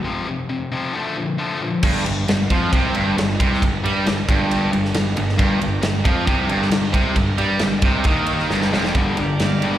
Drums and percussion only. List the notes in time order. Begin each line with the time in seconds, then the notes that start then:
1.83 kick, crash
2.06 ride
2.28 snare, ride
2.50 kick, ride
2.73 kick, ride
2.95 ride
3.18 snare, ride
3.40 kick, ride
3.54 snare
3.62 kick, ride
3.85 ride
4.06 snare, ride
4.29 kick, ride
4.51 ride
4.73 ride
4.85 snare
4.94 snare, ride
5.17 ride
5.29 snare
5.39 kick, ride
5.62 ride
5.83 snare, ride
6.05 kick, ride
6.27 kick, ride
6.49 ride
6.62 snare
6.71 snare, ride
6.94 kick, ride
7.16 kick, ride
7.38 ride
7.59 snare, ride
7.82 kick, ride
8.04 kick, ride
8.27 ride
8.39 snare
8.51 snare
8.62 snare
8.73 snare
8.84 snare
8.95 kick, ride
9.17 ride
9.40 snare, ride
9.62 ride